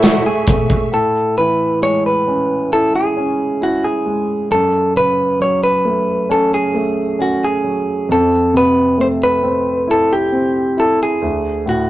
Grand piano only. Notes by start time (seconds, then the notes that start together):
Already playing: A3
0.02 A3
0.48 A3
0.92 A2
1.37 E3
1.82 G#3
2.27 C#4
2.72 E4
3.17 C#4
3.61 E4
4.06 G#3
4.51 F#2
4.95 C#3
5.40 F#3
5.85 A3
6.30 C#4
6.74 A3
7.19 C#4
7.64 F#3
8.09 F2
8.53 C3
8.98 A3
9.43 C4
9.87 E4
10.32 C4
10.77 E4
11.22 D2
11.66 A2